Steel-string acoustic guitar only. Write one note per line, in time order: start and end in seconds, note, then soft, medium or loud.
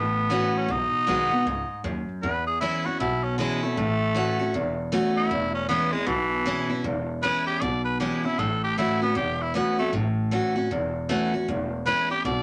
0.00 0.66 A2 medium
0.30 0.67 E3 medium
0.30 0.68 A3 medium
0.30 0.68 C#4 medium
0.30 0.68 F#4 loud
0.68 1.43 B2 medium
1.07 1.31 D#3 medium
1.07 1.31 G#3 medium
1.07 1.31 B3 medium
1.07 1.30 F#4 medium
1.31 1.46 B3 medium
1.31 1.45 F#4 medium
1.47 1.83 G#2 medium
1.84 2.21 F#2 loud
2.23 2.97 E2 medium
2.61 2.85 E3 medium
2.61 2.85 G#3 medium
2.61 2.85 C#4 loud
2.61 2.84 E4 medium
2.85 3.00 C#4 soft
2.85 2.99 E4 medium
3.00 3.74 B2 medium
3.38 3.62 E3 medium
3.38 3.62 G#3 medium
3.38 3.62 C#4 medium
3.38 3.61 E4 medium
3.62 3.77 C#4 medium
3.62 3.76 E4 medium
3.77 4.51 A2 medium
4.14 4.38 E3 medium
4.14 4.39 A3 medium
4.14 4.39 C#4 loud
4.14 4.38 F#4 loud
4.39 4.54 C#4 medium
4.39 4.53 F#4 medium
4.54 5.28 E2 medium
4.92 5.29 E3 medium
4.92 5.29 A3 medium
4.92 5.30 C#4 loud
4.92 5.30 F#4 medium
5.31 6.05 E2 medium
5.69 5.92 E3 medium
5.69 5.93 G#3 loud
5.69 5.93 C#4 loud
5.69 5.92 E4 loud
5.93 6.08 C#4 soft
5.93 6.07 E4 medium
6.06 6.81 B2 medium
6.45 6.69 E3 loud
6.45 6.69 G#3 medium
6.45 6.70 C#4 medium
6.45 6.68 E4 loud
6.69 6.85 C#4 soft
6.69 6.84 E4 medium
6.84 7.59 E2 medium
7.23 7.60 E3 medium
7.23 7.60 G#3 medium
7.23 7.61 C#4 loud
7.23 7.61 E4 loud
7.61 8.36 B2 medium
8.00 8.23 E3 medium
8.00 8.24 G#3 loud
8.00 8.24 C#4 medium
8.00 8.22 E4 medium
8.23 8.39 C#4 soft
8.23 8.38 E4 medium
8.39 9.13 A2 medium
8.78 9.01 E3 medium
8.78 9.01 A3 medium
8.78 9.01 C#4 medium
8.78 9.00 F#4 medium
9.02 9.16 C#4 medium
9.02 9.15 F#4 medium
9.15 9.90 E2 medium
9.54 9.78 E3 medium
9.54 9.78 A3 medium
9.54 9.78 C#4 loud
9.54 9.77 F#4 loud
9.79 9.93 C#4 soft
9.79 9.92 F#4 medium
9.93 10.67 A2 medium
10.31 10.55 E3 medium
10.31 10.55 A3 medium
10.31 10.55 C#4 medium
10.31 10.54 F#4 loud
10.55 10.70 C#4 soft
10.55 10.69 F#4 medium
10.71 11.45 E2 medium
11.09 11.32 E3 loud
11.09 11.32 A3 loud
11.09 11.33 C#4 medium
11.09 11.32 F#4 loud
11.34 11.48 C#4 soft
11.34 11.47 F#4 medium
11.48 12.22 E2 medium
11.86 12.09 E3 medium
11.86 12.09 G#3 medium
11.86 12.10 C#4 loud
11.86 12.09 E4 loud
12.10 12.25 C#4 soft
12.10 12.24 E4 medium
12.25 12.43 B2 medium